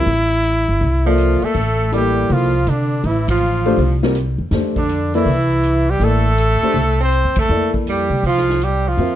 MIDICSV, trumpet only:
0, 0, Header, 1, 2, 480
1, 0, Start_track
1, 0, Key_signature, -1, "major"
1, 0, Tempo, 371517
1, 88, Time_signature, 4, 2, 24, 8
1, 11828, End_track
2, 0, Start_track
2, 0, Title_t, "Trumpet"
2, 0, Program_c, 0, 56
2, 0, Note_on_c, 0, 64, 106
2, 1377, Note_off_c, 0, 64, 0
2, 1391, Note_on_c, 0, 65, 77
2, 1872, Note_on_c, 0, 69, 91
2, 1892, Note_off_c, 0, 65, 0
2, 2502, Note_off_c, 0, 69, 0
2, 2530, Note_on_c, 0, 67, 81
2, 3012, Note_on_c, 0, 65, 85
2, 3031, Note_off_c, 0, 67, 0
2, 3478, Note_on_c, 0, 62, 72
2, 3498, Note_off_c, 0, 65, 0
2, 3951, Note_on_c, 0, 64, 74
2, 3971, Note_off_c, 0, 62, 0
2, 4252, Note_off_c, 0, 64, 0
2, 4264, Note_on_c, 0, 65, 76
2, 5160, Note_off_c, 0, 65, 0
2, 6173, Note_on_c, 0, 62, 76
2, 6613, Note_off_c, 0, 62, 0
2, 6675, Note_on_c, 0, 64, 91
2, 7626, Note_on_c, 0, 67, 82
2, 7646, Note_off_c, 0, 64, 0
2, 7807, Note_on_c, 0, 69, 96
2, 7826, Note_off_c, 0, 67, 0
2, 9060, Note_off_c, 0, 69, 0
2, 9084, Note_on_c, 0, 72, 92
2, 9510, Note_off_c, 0, 72, 0
2, 9569, Note_on_c, 0, 69, 93
2, 9993, Note_off_c, 0, 69, 0
2, 10209, Note_on_c, 0, 67, 77
2, 10636, Note_off_c, 0, 67, 0
2, 10693, Note_on_c, 0, 65, 85
2, 11160, Note_on_c, 0, 67, 81
2, 11179, Note_off_c, 0, 65, 0
2, 11480, Note_on_c, 0, 65, 73
2, 11500, Note_off_c, 0, 67, 0
2, 11828, Note_off_c, 0, 65, 0
2, 11828, End_track
0, 0, End_of_file